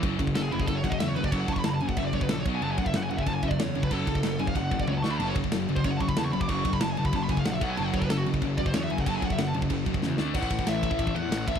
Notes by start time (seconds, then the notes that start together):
0.03 F#1 F#2 C#3 F#3, kick, crash
0.19 F#1 F#2 C#3, kick, crash
0.27 kick
0.35 F#1 F#2 C#3 A4, snare, crash
0.43 G#4
0.51 F#1 F#2 C#3 E4, crash
0.60 G#4, kick
0.67 F#1 F#2 C#3 A4, kick, crash
0.75 C#5
0.83 F#1 F#2 C#3 F#5, kick, crash
0.90 D#5, kick
0.99 E2 F#2 C#3 E5, snare, crash
1.08 C#5
1.16 F#1 F#2 C#3 B4, crash
1.24 D5, kick
1.32 F#1 F#2 C#3 F#3 C#5, kick, crash
1.40 F#5
1.48 F#1 F#2 C#3 A5, kick, crash
1.53 C#6, kick
1.59 B5
1.64 F#1 F#2 C#3 A5, snare, crash
1.70 B5
1.75 A5
1.80 F#1 F#2 C#3 G#5, crash
1.89 F#5, kick
1.97 F#1 F#2 C#3 E5, kick, crash
2.05 D5
2.13 F#1 F#2 C#3 C#5, kick, crash
2.21 B4, kick
2.29 A#1 F#2 C#3 A4, snare, crash
2.39 C#5
2.45 B1 B2 F#3 B3, kick, crash
2.55 G#5
2.61 F#1 F#2 C#3 F#3 A5, crash
2.71 G#5
2.78 F#1 F#2 C#3 F#5, kick, crash
2.86 E5, kick
2.94 F#1 F#2 C#3 F#5, snare, crash
3.04 G#5
3.10 F#1 F#2 C#3 F#5, crash
3.17 E5, kick
3.21 G#5
3.26 F#1 F#2 C#3 A5, kick, crash
3.34 G#5
3.43 F#1 F#2 C#3 E5, kick, crash
3.50 D5, kick
3.58 E2 F#2 C#3 C#5, snare, crash
3.75 F#1 F#2 C#3, crash
3.83 B4, kick
3.91 F#1 F#2 C#3 F#3 A4, kick, crash
4.07 F#1 F#2 C#3, kick, crash
4.15 kick
4.23 F#1 F#2 C#3, snare, crash
4.39 F#1 F#2 C#3 G#5, crash
4.47 F5, kick
4.55 F#1 F#2 C#3 F#5, kick, crash
4.71 F#1 F#2 C#3, kick, crash
4.80 D5, kick
4.88 C#2 F#2 C#3 C#5, high tom
4.93 F#5
4.98 A5
5.02 D2 D3 A3 D4 C#6, snare
5.11 B5
5.20 F#1 F#2 C#3 F#3 A5, crash
5.28 C#5
5.35 F#1 F#2 C#3, kick, crash
5.44 kick
5.52 F#1 F#2 C#3, snare, crash
5.68 F#1 F#2 C#3 F#3, crash
5.76 C5, kick
5.84 F#1 F#2 C#3 C#5, kick, crash
5.91 F#5
5.97 F#1 A5, kick, crash
6.01 F#2 C#3 C#6
6.09 B5, kick
6.17 E2 F#2 C#3 A5, snare, crash
6.25 C#6
6.33 F#1 F#2 C#3 B5, crash
6.41 D6, kick
6.49 F#1 F#2 C#3 F#3 C#6, kick, crash
6.65 F#1 F#2 C#3, kick, crash
6.73 B5, kick
6.81 F#1 F#2 C#3 A5, snare, crash
6.91 G#5
6.97 F#1 F#2 C#3 F#3 A5, crash
7.05 B5, kick
7.13 F#1 F#2 C#3 A5, kick, crash
7.23 B5
7.29 F#1 F#2 C#3 G#5, kick, crash
7.37 F5, kick
7.45 A#1 F#2 C#3 F#5, snare, crash
7.54 E5
7.61 B1 B2 F#3 B3 F#5, kick, crash
7.70 G#5
7.77 F#1 F#2 C#3 F#3 A5, crash
7.86 F#5
7.93 F#1 F#2 C#3 C#5, kick, crash
7.99 A4, kick
8.04 B4
8.10 F#1 F#2 C#3 A4, snare, crash
8.17 F#4
8.26 F#1 F#2 C#3 F#3, crash
8.34 kick
8.42 F#1 F#2 C#3, kick, crash
8.57 F#1 F#2 C#3 D5, kick, crash
8.66 C5, kick
8.74 E2 F#2 C#3 C#5, snare, crash
8.84 E5
8.90 F#1 F#2 C#3 G#5, crash
8.98 F#5, kick
9.06 F#1 F#2 C#3 F#3 A5, kick, crash
9.16 G#5
9.22 F#1 F#2 C#3 F#5, kick, crash
9.30 E5, kick
9.38 F#1 F#2 C#3 F#5, snare, crash
9.47 A5
9.54 F#1 F#2 C#3 F#3, crash
9.62 kick
9.69 F#1 F#2 C#3, kick, crash
9.86 F#1 F#2 C#3, kick, crash
9.94 kick
10.02 E2 F#2 C#3, snare
10.18 D2 D3 A3 D4, snare
10.34 A1 A2 E3 A3 F#5, kick, crash
10.43 kick
10.50 A1 A2 E3, kick, ride
10.59 A2 E3, kick
10.67 A1 A2 E3 E5, snare, ride
10.83 A2 E3 A3, kick, ride
10.90 A2 E3, kick
10.98 A1 A2 E3 E5, kick, ride
11.07 kick
11.15 E2 A2 E3 F#5, ride
11.22 A2 E3
11.31 A1 A2 E3 A3, snare, ride
11.47 A1 A2 E3 E5, kick, ride
11.55 A2 E3, kick